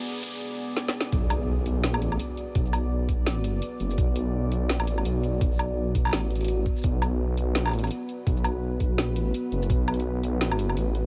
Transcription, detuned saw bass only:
1.12 B1
1.87 A#1
2.55 B1
3.80 F#1
3.98 B1
4.73 A#1
4.94 A1
5.05 B1
5.59 B1
6.13 A1
6.84 B1
7.59 A#1
8.27 B1
9.02 A#1
9.52 F#1
9.70 B1
10.77 A1

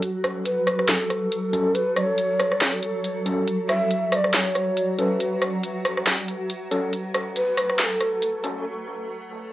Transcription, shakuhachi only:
0.45 B4
0.88 A4
1.75 B4
1.96 D5
2.01 C#5
3.69 E5
4.12 D5 E5
4.34 C#5
4.99 B4
7.36 B4
7.80 B4
7.84 A4

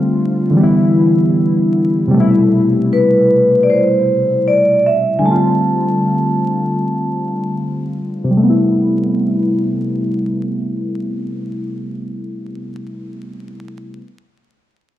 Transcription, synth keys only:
Already playing: D3 G3 A3 C4 F4
0.50 D3 E3
0.57 G3 B3
0.63 E4
2.07 C3 G3
2.14 B2 A3
2.20 E4
5.19 D3 G3
5.25 A3 B3
5.31 C4 F4
8.24 C3
8.30 G3
8.37 A3
8.43 B3
8.50 E4

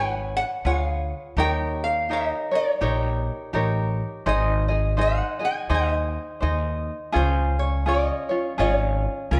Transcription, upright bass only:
Already playing: G#1
0.65 D2
1.37 D#2
2.81 A#1
3.54 A1
4.26 G#1
5.70 D#2
6.43 D#2
7.15 C#2
8.59 G#1
9.31 C#2

